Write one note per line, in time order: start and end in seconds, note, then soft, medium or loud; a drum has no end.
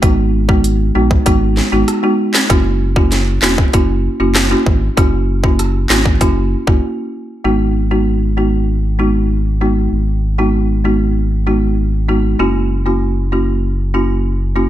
0.02 0.91 G#1 loud
0.02 0.45 G#3 loud
0.02 0.45 B3 medium
0.02 0.45 D#4 medium
0.02 0.45 F#4 loud
0.02 kick loud
0.02 closed hi-hat medium
0.49 0.63 G#3 medium
0.49 0.63 B3 medium
0.49 0.63 D#4 medium
0.49 0.63 F#4 medium
0.49 kick medium
0.64 closed hi-hat medium
0.95 1.19 A#1 loud
0.95 1.09 G#3 medium
0.95 1.09 B3 medium
0.95 1.09 D#4 medium
0.95 1.10 F#4 medium
1.11 kick loud
1.26 1.61 G#1 loud
1.26 1.40 G#3 loud
1.26 1.40 B3 medium
1.26 1.40 D#4 medium
1.26 1.41 F#4 loud
1.26 kick medium
1.26 closed hi-hat medium
1.57 snare medium
1.72 1.84 G#1 loud
1.72 1.87 G#3 medium
1.72 1.87 B3 medium
1.72 1.87 D#4 medium
1.72 1.87 F#4 medium
1.88 cross-stick medium
1.88 closed hi-hat medium
2.03 2.18 G#3 medium
2.03 2.18 B3 medium
2.03 2.18 D#4 medium
2.03 2.18 F#4 medium
2.34 snare loud
2.34 clap loud
2.50 3.39 F#1 loud
2.50 2.92 A#3 medium
2.50 2.93 C#4 medium
2.50 2.93 E4 medium
2.50 2.93 F#4 loud
2.50 kick loud
2.50 closed hi-hat medium
2.96 3.10 A#3 medium
2.96 3.10 C#4 medium
2.96 3.11 E4 medium
2.96 3.11 F#4 medium
2.96 kick loud
3.12 snare medium
3.12 closed hi-hat medium
3.42 3.66 E1 medium
3.42 3.57 A#3 medium
3.42 3.57 C#4 medium
3.42 3.57 E4 medium
3.42 3.57 F#4 medium
3.42 snare loud
3.42 clap loud
3.58 kick loud
3.73 4.09 F#1 loud
3.73 3.88 A#3 loud
3.73 3.88 C#4 medium
3.73 3.88 E4 medium
3.73 3.88 F#4 loud
3.73 kick medium
3.73 closed hi-hat medium
4.20 4.55 F#1 medium
4.20 4.34 A#3 medium
4.20 4.34 C#4 medium
4.20 4.34 E4 medium
4.20 4.34 F#4 medium
4.35 cross-stick medium
4.35 snare loud
4.35 clap medium
4.35 closed hi-hat medium
4.51 4.65 A#3 medium
4.51 4.65 C#4 medium
4.51 4.65 E4 medium
4.51 4.65 F#4 medium
4.66 4.90 G#1 medium
4.66 kick medium
4.97 5.86 F#1 loud
4.97 5.40 A#3 medium
4.97 5.40 C#4 medium
4.97 5.40 E4 medium
4.97 5.40 F#4 loud
4.97 kick loud
4.97 closed hi-hat medium
5.44 5.58 A#3 medium
5.44 5.58 C#4 medium
5.44 5.58 E4 medium
5.44 5.58 F#4 medium
5.44 kick loud
5.59 cross-stick medium
5.59 closed hi-hat medium
5.90 6.23 G#1 loud
5.90 6.04 A#3 medium
5.90 6.04 C#4 medium
5.90 6.04 E4 medium
5.90 6.04 F#4 medium
5.90 snare loud
5.90 clap loud
6.06 kick medium
6.21 6.56 F#1 loud
6.21 6.35 A#3 medium
6.21 6.35 C#4 medium
6.21 6.35 E4 medium
6.21 6.35 F#4 loud
6.21 kick medium
6.21 closed hi-hat medium
6.67 6.79 F#1 loud
6.67 6.81 A#3 medium
6.67 6.82 C#4 medium
6.67 6.82 E4 medium
6.67 6.82 F#4 medium
6.67 kick loud
7.44 9.88 G#1 medium
7.44 7.87 G#3 medium
7.44 7.87 B3 medium
7.44 7.87 D#4 medium
7.44 7.88 F#4 medium
7.91 8.05 G#3 medium
7.91 8.05 B3 medium
7.91 8.05 D#4 medium
7.91 8.05 F#4 medium
8.37 8.52 G#3 medium
8.37 8.52 B3 medium
8.37 8.52 D#4 medium
8.37 8.52 F#4 medium
8.99 9.13 G#3 medium
8.99 9.13 B3 medium
8.99 9.14 D#4 medium
8.99 9.14 F#4 medium
9.61 9.75 G#3 medium
9.61 9.75 B3 medium
9.61 9.76 D#4 medium
9.61 9.76 F#4 medium
9.92 12.36 G#1 medium
10.38 10.53 G#3 medium
10.38 10.53 B3 medium
10.38 10.53 D#4 medium
10.38 10.53 F#4 medium
10.85 10.99 G#3 medium
10.85 10.99 B3 medium
10.85 10.99 D#4 medium
10.85 10.99 F#4 medium
11.47 11.61 G#3 medium
11.47 11.61 B3 medium
11.47 11.61 D#4 medium
11.47 11.61 F#4 medium
12.08 12.23 G#3 medium
12.08 12.23 B3 medium
12.08 12.23 D#4 medium
12.08 12.23 F#4 medium
12.39 14.69 F#1 medium
12.39 12.82 A#3 medium
12.39 12.82 C#4 medium
12.39 12.82 E4 medium
12.39 12.82 F#4 medium
12.86 13.00 A#3 medium
12.86 13.00 C#4 medium
12.86 13.00 E4 medium
12.86 13.00 F#4 medium
13.32 13.46 A#3 medium
13.32 13.47 C#4 medium
13.32 13.47 E4 medium
13.32 13.47 F#4 medium
13.94 14.08 A#3 medium
13.94 14.08 C#4 medium
13.94 14.09 E4 medium
13.94 14.09 F#4 medium
14.56 14.69 A#3 medium
14.56 14.69 C#4 medium
14.56 14.69 E4 medium
14.56 14.69 F#4 medium